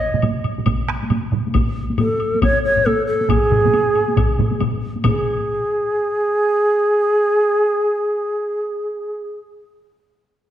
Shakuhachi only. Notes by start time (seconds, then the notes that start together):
Already playing: D#5
1.99 A4
2.43 C#5
2.64 C#5
2.86 A4
3.07 A4
3.29 G#4
5.05 G#4